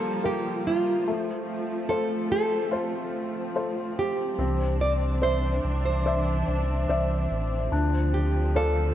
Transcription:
0.00 4.34 F3 medium
0.00 1.02 G3 medium
0.00 0.21 A#3 soft
0.00 1.02 A#3 medium
0.00 0.24 F4 soft
0.00 0.24 G4 soft
0.00 0.25 A4 medium
0.00 0.25 A#4 soft
0.24 1.04 F4 soft
0.24 1.03 G4 soft
0.24 0.63 G4 medium
0.24 1.04 A#4 soft
0.67 1.93 F4 medium
1.07 4.36 A3 medium
1.07 4.35 A3 medium
1.07 8.94 C4 medium
1.89 2.69 F4 soft
1.89 2.31 A4 medium
1.89 2.70 A4 soft
1.89 2.70 C5 soft
2.32 3.99 A4 medium
2.71 3.53 F4 soft
2.71 3.53 A4 soft
2.71 3.53 C5 medium
3.55 4.36 F4 soft
3.55 4.36 A4 soft
3.55 4.37 C5 soft
3.99 4.81 G4 medium
4.37 5.60 C2 loud
4.37 7.68 E3 medium
4.37 7.68 C4 medium
4.37 7.68 D4 medium
4.81 4.93 D5 medium
5.22 6.03 C5 soft
5.22 5.82 C5 medium
5.22 6.03 D5 soft
5.22 6.04 E5 soft
5.64 6.44 C2 medium
5.85 7.27 C5 medium
6.06 6.87 C5 soft
6.06 6.87 D5 soft
6.06 6.87 E5 medium
6.47 6.86 C2 medium
6.88 7.27 C2 medium
6.88 7.69 C5 soft
6.88 7.70 D5 soft
6.88 7.70 E5 soft
7.31 7.69 A1 medium
7.71 8.92 D2 loud
7.71 8.94 D3 medium
7.71 8.94 F3 medium
7.71 8.94 D4 medium
8.14 8.56 G4 medium
8.56 8.94 A4 medium
8.56 8.94 C5 soft
8.56 8.94 D5 soft
8.56 8.94 F5 soft

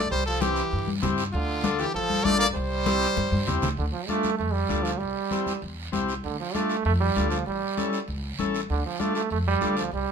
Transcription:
0.00 0.11 D5 loud
0.10 0.60 C2 medium
0.10 0.25 G3 medium
0.10 0.25 C5 loud
0.10 high conga soft
0.10 long guiro medium
0.26 0.44 F3 medium
0.26 0.42 A4 medium
0.40 0.91 E3 medium
0.40 0.63 C4 medium
0.40 0.63 E4 medium
0.40 0.91 G4 medium
0.40 0.63 G4 medium
0.40 high conga medium
0.40 short guiro medium
0.56 short guiro medium
0.71 0.97 G2 loud
0.71 high conga soft
0.71 long guiro medium
0.88 high conga medium
1.02 1.27 G2 medium
1.02 1.24 C4 medium
1.02 1.24 E4 medium
1.02 1.24 G4 loud
1.02 high conga medium
1.02 low conga medium
1.02 short guiro medium
1.18 short guiro medium
1.33 1.82 D2 medium
1.33 1.80 D3 medium
1.33 1.81 F4 medium
1.33 high conga soft
1.33 long guiro medium
1.64 1.85 D4 medium
1.64 1.85 F4 medium
1.64 1.86 A4 medium
1.64 high conga loud
1.64 short guiro medium
1.79 1.93 E3 medium
1.79 1.95 G4 medium
1.79 short guiro medium
1.94 2.19 A1 medium
1.94 2.25 F3 medium
1.94 2.26 A4 loud
1.94 high conga soft
1.94 long guiro medium
2.10 high conga medium
2.24 2.49 A1 medium
2.24 2.38 A3 loud
2.24 2.46 D4 medium
2.24 2.46 F4 medium
2.24 2.47 A4 medium
2.24 2.40 D5 loud
2.24 high conga medium
2.24 short guiro medium
2.39 2.46 A#3 medium
2.39 2.47 D5 loud
2.39 short guiro medium
2.54 3.05 C2 loud
2.54 3.58 G3 medium
2.54 3.59 C5 loud
2.54 high conga soft
2.54 long guiro medium
2.86 3.07 C4 medium
2.86 3.08 E4 medium
2.86 3.08 G4 medium
2.86 high conga loud
2.86 short guiro medium
3.01 short guiro medium
3.16 3.29 G2 medium
3.16 high conga medium
3.16 long guiro medium
3.32 3.46 G2 medium
3.32 high conga medium
3.47 3.61 E2 medium
3.47 3.69 C4 medium
3.47 3.69 E4 medium
3.47 3.69 G4 loud
3.47 low conga medium
3.47 short guiro medium
3.62 3.77 D2 medium
3.62 low conga loud
3.62 short guiro medium
3.77 3.91 D2 medium
3.77 3.85 D3 medium
3.77 long guiro medium
3.93 4.09 F3 medium
4.08 4.37 A3 loud
4.08 4.30 D4 medium
4.08 4.31 F4 medium
4.08 4.31 A4 medium
4.08 high conga medium
4.08 short guiro medium
4.23 high conga medium
4.23 short guiro medium
4.38 4.64 F2 medium
4.38 4.53 A3 medium
4.38 long guiro medium
4.52 4.84 G3 medium
4.69 4.94 D2 medium
4.69 4.91 D4 medium
4.69 4.91 F4 medium
4.69 4.91 A4 medium
4.69 high conga medium
4.69 short guiro medium
4.83 4.99 F3 medium
4.83 short guiro medium
4.98 5.13 C2 medium
4.98 5.61 G3 medium
4.98 long guiro medium
5.31 5.53 C4 medium
5.31 5.53 E4 medium
5.31 5.53 G4 medium
5.31 high conga medium
5.31 short guiro medium
5.47 high conga medium
5.47 short guiro medium
5.62 5.87 E2 medium
5.62 long guiro medium
5.92 6.18 C2 medium
5.92 6.14 C4 medium
5.92 6.14 E4 medium
5.92 6.14 G4 medium
5.92 high conga medium
5.92 short guiro medium
6.09 short guiro medium
6.24 6.36 D2 medium
6.24 6.38 D3 medium
6.24 long guiro medium
6.40 6.56 F3 medium
6.54 6.85 A3 loud
6.54 6.76 D4 medium
6.54 6.76 F4 medium
6.54 6.76 A4 medium
6.54 high conga medium
6.54 short guiro medium
6.70 short guiro medium
6.85 7.10 F2 medium
6.85 6.92 A3 loud
6.85 long guiro medium
7.00 7.29 G3 medium
7.16 7.41 D2 medium
7.16 7.37 D4 medium
7.16 7.38 F4 medium
7.16 7.38 A4 medium
7.16 high conga medium
7.16 short guiro medium
7.30 7.45 F3 medium
7.30 short guiro medium
7.46 7.59 A1 medium
7.46 8.04 G3 medium
7.46 long guiro medium
7.77 7.99 C#4 medium
7.77 7.99 E4 medium
7.77 7.99 A4 medium
7.77 high conga medium
7.77 short guiro medium
7.93 short guiro medium
8.08 8.33 C#2 medium
8.08 long guiro medium
8.39 8.63 A1 medium
8.39 8.60 C#4 medium
8.39 8.61 E4 medium
8.39 8.61 A4 medium
8.39 high conga medium
8.39 short guiro medium
8.55 short guiro medium
8.70 8.82 D2 medium
8.70 8.84 D3 medium
8.70 long guiro medium
8.86 9.02 F3 medium
8.99 9.15 A3 medium
8.99 9.21 D4 medium
8.99 9.22 F4 medium
8.99 9.22 A4 medium
8.99 high conga medium
8.99 short guiro medium
9.15 9.30 A3 medium
9.15 short guiro medium
9.30 9.56 F2 loud
9.30 9.39 A3 medium
9.30 long guiro medium
9.47 9.76 G3 medium
9.61 9.86 D2 medium
9.61 9.83 D4 medium
9.61 9.83 F4 medium
9.61 9.83 A4 medium
9.61 high conga medium
9.61 short guiro medium
9.77 9.92 F3 medium
9.77 short guiro medium
9.92 10.05 C2 medium
9.92 10.12 G3 medium
9.92 long guiro medium

